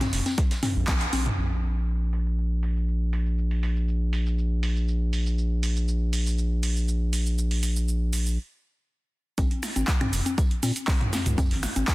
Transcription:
0.01 snare, closed hi-hat, mid tom, tambourine, high conga
0.13 sub bass F1, snare, open hi-hat, tambourine
0.26 snare, closed hi-hat, tambourine, high conga
0.38 kick, snare, closed hi-hat
0.51 snare, closed hi-hat, tambourine
0.63 snare, mid tom, open hi-hat, tambourine, high conga
0.76 sub bass A#1
0.88 kick, clap, closed hi-hat, tambourine, high conga
1.01 closed hi-hat
1.13 sub bass A#1, open hi-hat, tambourine, high conga
1.26 closed hi-hat, mid tom
1.38 sub bass A#1, shaker
1.63 open hi-hat, shaker
1.76 shaker
1.88 shaker
2.13 open hi-hat, shaker
2.26 shaker
2.38 shaker
2.63 open hi-hat, shaker
2.76 shaker
2.88 shaker
3.13 open hi-hat, shaker
3.26 shaker
3.38 shaker
3.51 open hi-hat
3.63 open hi-hat, shaker
3.76 shaker
3.88 shaker
4.13 open hi-hat, shaker
4.26 shaker
4.38 shaker
4.63 open hi-hat, shaker
4.76 shaker
4.88 shaker
5.13 open hi-hat, shaker
5.26 shaker
5.38 shaker
5.63 open hi-hat, shaker
5.76 shaker
5.88 shaker
6.13 open hi-hat, shaker
6.26 shaker
6.38 shaker
6.63 open hi-hat, shaker
6.76 shaker
6.88 shaker
7.13 open hi-hat, shaker
7.26 shaker
7.38 shaker
7.51 open hi-hat
7.63 open hi-hat, shaker
7.76 shaker
7.88 shaker
8.13 open hi-hat, shaker
8.26 shaker
9.38 sub bass A#1, kick, closed hi-hat, tambourine, high conga, shaker
9.51 closed hi-hat
9.63 finger snap, snare, open hi-hat, tambourine, shaker
9.76 sub bass G#1, closed hi-hat, high conga, shaker
9.88 kick, snare, clap, closed hi-hat, tambourine, shaker
10.01 finger snap, closed hi-hat, mid tom, high conga
10.13 sub bass F1, open hi-hat, tambourine, shaker
10.26 closed hi-hat, high conga, shaker
10.38 kick, closed hi-hat, tambourine, shaker
10.51 closed hi-hat
10.63 sub bass A#2, open hi-hat, tambourine, high conga, shaker
10.76 closed hi-hat, shaker
10.88 kick, snare, clap, open hi-hat, tambourine, high conga, shaker
11.01 closed hi-hat, mid tom
11.13 snare, open hi-hat, tambourine, high conga, shaker
11.26 sub bass C#2, closed hi-hat, mid tom, shaker
11.38 kick, closed hi-hat, tambourine, high conga, shaker
11.51 sub bass G#1, snare, open hi-hat
11.63 finger snap, snare, open hi-hat, tambourine, shaker
11.76 sub bass G#1, closed hi-hat, high conga, shaker
11.88 kick, snare, clap, closed hi-hat, tambourine, shaker

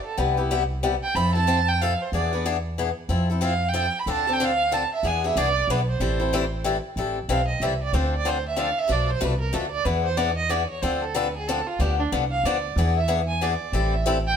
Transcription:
0.04 violin A4
0.18 upright bass C2, steel-string acoustic guitar C3 G3 B3 E4 G4, violin B4
0.37 steel-string acoustic guitar B3 E4 G4
0.51 steel-string acoustic guitar C3 G3 B3 E4 G4
0.83 steel-string acoustic guitar C3 G3 B3 E4 G4
1.03 violin G5
1.15 upright bass F2, steel-string acoustic guitar F3 C4 E4 A4, violin B5
1.35 steel-string acoustic guitar C4 E4 A4, violin A5
1.47 steel-string acoustic guitar F3 C4 E4 A4
1.68 violin G5
1.81 steel-string acoustic guitar F3 C4 E4 A4, violin F5
2.02 violin C5
2.12 upright bass E2, steel-string acoustic guitar E3 B3 D4 G#4, violin D5
2.33 steel-string acoustic guitar B3 D4 G#4
2.45 steel-string acoustic guitar E3 B3 D4 G#4
2.78 steel-string acoustic guitar E3 B3 D4 G#4
3.09 upright bass F2, steel-string acoustic guitar F3 C4 E4 A4
3.30 steel-string acoustic guitar C4 E4 A4
3.41 steel-string acoustic guitar F3 C4 E4 A4, violin F5
3.68 violin G5
3.74 steel-string acoustic guitar F3 C4 E4 A4
3.99 violin B5
4.06 upright bass D2, steel-string acoustic guitar D3 F3 C4 D4 A4
4.12 violin A5
4.27 steel-string acoustic guitar C4 D4 A4
4.33 violin G5
4.40 steel-string acoustic guitar D3 F3 C4 D4 A4
4.44 violin F5
4.72 steel-string acoustic guitar D3 F3 C4 D4 A4, violin A5
4.94 violin E5
5.03 upright bass E2, steel-string acoustic guitar E3 B3 D4 G#4, violin G#5
5.24 steel-string acoustic guitar B3 D4 G#4, violin E5
5.36 upright bass C2, steel-string acoustic guitar E3 B3 D4 G#4, violin D5
5.68 upright bass B1, steel-string acoustic guitar E3 B3 D4 G#4, violin B4
5.90 violin C5
6.00 upright bass A1, steel-string acoustic guitar E3 G3 C4 E4 A4
6.20 steel-string acoustic guitar C4 E4 A4
6.33 steel-string acoustic guitar E3 G3 C4 E4 A4
6.64 steel-string acoustic guitar E3 G3 C4 E4 A4
6.96 upright bass A1, steel-string acoustic guitar E3 G3 C4 E4 A4
7.28 upright bass B1, steel-string acoustic guitar E3 G3 C4 E4 A4, violin F5
7.48 violin D#5
7.60 upright bass C2, steel-string acoustic guitar E3 G3 C4 E4 A4, violin E5
7.83 violin D5
7.93 upright bass D2, steel-string acoustic guitar D3 F3 C4 D4 A4, violin C5
8.16 violin D5
8.25 steel-string acoustic guitar D3 F3 C4 D4 A4, violin C5
8.48 violin E5
8.56 steel-string acoustic guitar D3 F3 C4 D4 A4, violin F5
8.79 violin E5
8.88 upright bass B1, steel-string acoustic guitar B2 F3 A3 D4 A4
8.92 violin D5
9.10 violin C5
9.21 upright bass C2, steel-string acoustic guitar B2 F3 A3 D4 A4, violin B4
9.40 violin A#4
9.53 upright bass D2, steel-string acoustic guitar B2 F3 A3 D4 A4, violin A4
9.71 violin D5
9.85 upright bass E2, steel-string acoustic guitar E3 B3 D4 G#4, violin B4
10.04 violin C5
10.17 steel-string acoustic guitar E3 B3 D4 G#4, violin D5
10.37 violin D#5
10.49 steel-string acoustic guitar E3 B3 D4 G#4, violin D5
10.69 violin C#5
10.82 upright bass D2, steel-string acoustic guitar D3 F3 C4 D4 A4, violin C5
11.01 violin A4
11.15 steel-string acoustic guitar D3 F3 C4 D4 A4, violin B4
11.37 violin G#4
11.47 steel-string acoustic guitar D3 F3 C4 D4 A4, violin A4
11.67 violin F4
11.79 upright bass D2, steel-string acoustic guitar D3 F3 B3 D4, violin G4
11.99 violin D4
12.12 upright bass C2, steel-string acoustic guitar D3 F3 B3 D4
12.31 violin F5
12.44 upright bass D2, steel-string acoustic guitar D3 F3 B3 D4, violin D5
12.76 upright bass E2, steel-string acoustic guitar E3 B3 D4 G#4
12.96 violin E5
13.08 steel-string acoustic guitar E3 B3 D4 G#4
13.28 violin G#5
13.41 steel-string acoustic guitar E3 B3 D4 G#4, violin D5
13.72 upright bass A1, steel-string acoustic guitar E3 G3 C4 E4 A4
13.94 violin E5
14.06 steel-string acoustic guitar E3 G3 C4 E4 A4
14.27 violin G5

